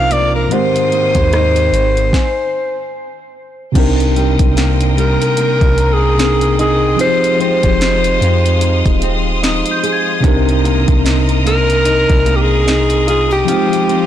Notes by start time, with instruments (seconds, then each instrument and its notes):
Already playing: 808-style bass C2, tine electric piano C3 C4 D4 D#4 F4 A#4, nylon-string guitar C3 F3 D#4, string section A#4 F5 A#5 D6, alto saxophone F5
0.11 nylon-string guitar A#3, alto saxophone D5, closed hi-hat
0.35 alto saxophone A#4
0.48 tine electric piano G#2 D#3 C4, nylon-string guitar G#2, string section G#3 G5 C6 D#6, closed hi-hat
0.53 tine electric piano G4 A#4, alto saxophone C5
0.76 closed hi-hat
0.92 nylon-string guitar A#3, closed hi-hat
1.15 808-style bass D#2, nylon-string guitar C4, kick, closed hi-hat
1.32 nylon-string guitar D#4, cross-stick, closed hi-hat
1.56 closed hi-hat
1.73 808-style bass G#1, nylon-string guitar C4, closed hi-hat
1.97 closed hi-hat
2.13 celesta G#5, kick, snare
3.72 808-style bass C2, tine electric piano C3 C4 D4, nylon-string guitar C3, string section A#4 G5 C6 D#6, kick, closed hi-hat, crash
3.77 tine electric piano D#4 A#4
4.00 closed hi-hat
4.16 nylon-string guitar G3, celesta G5, closed hi-hat
4.39 808-style bass C2, kick, closed hi-hat
4.56 nylon-string guitar A#3, snare, closed hi-hat
4.81 closed hi-hat
4.97 nylon-string guitar G3, alto saxophone A#4, closed hi-hat
5.22 closed hi-hat
5.37 nylon-string guitar A#3, closed hi-hat
5.61 808-style bass C2, kick, closed hi-hat
5.78 celesta A#5, closed hi-hat
5.93 alto saxophone G#4
6.17 tine electric piano C3 C4 D4 D#4 A#4, nylon-string guitar A#3, snare, closed hi-hat
6.41 closed hi-hat
6.59 nylon-string guitar D#4, alto saxophone G#4, closed hi-hat
6.96 tine electric piano F3 C4 D#4, nylon-string guitar F3, string section G#3 F5, closed hi-hat
7.01 tine electric piano G4 G#4, alto saxophone C5
7.24 closed hi-hat
7.40 nylon-string guitar C4, alto saxophone C5, closed hi-hat
7.63 808-style bass F1, kick, closed hi-hat
7.81 nylon-string guitar D#4, snare, closed hi-hat
8.04 closed hi-hat
8.21 808-style bass F2, nylon-string guitar C4, closed hi-hat
8.46 closed hi-hat
8.61 nylon-string guitar D#4, closed hi-hat
8.86 808-style bass D#1, kick, closed hi-hat
9.02 nylon-string guitar C4, closed hi-hat
9.43 nylon-string guitar D#4, celesta D#6, snare, closed hi-hat
9.66 closed hi-hat
9.71 celesta G6
9.83 nylon-string guitar G#4, closed hi-hat
9.92 celesta G#6
10.21 808-style bass C2, tine electric piano C3 C4 D4, nylon-string guitar C3, string section A#4 A#5, kick, closed hi-hat
10.26 tine electric piano D#4 A#4
10.49 closed hi-hat
10.64 nylon-string guitar A#3, closed hi-hat
10.88 808-style bass C2, kick, closed hi-hat
11.05 nylon-string guitar D#4, snare, closed hi-hat
11.29 closed hi-hat
11.45 nylon-string guitar A#3, alto saxophone A#4, closed hi-hat
11.70 closed hi-hat
11.85 nylon-string guitar D#4, closed hi-hat
12.10 808-style bass C2, kick, closed hi-hat
12.26 nylon-string guitar A#3, closed hi-hat
12.36 alto saxophone G4
12.42 alto saxophone G#4
12.67 nylon-string guitar D#4, snare, closed hi-hat
12.90 closed hi-hat
13.07 nylon-string guitar F4, alto saxophone G#4, celesta D#6, closed hi-hat
13.31 nylon-string guitar G4, alto saxophone G4
13.45 tine electric piano F3 C4 D#4, nylon-string guitar F3, string section G#3 F5 C6, closed hi-hat
13.50 tine electric piano G#3 G5
13.73 closed hi-hat
13.89 nylon-string guitar C4, closed hi-hat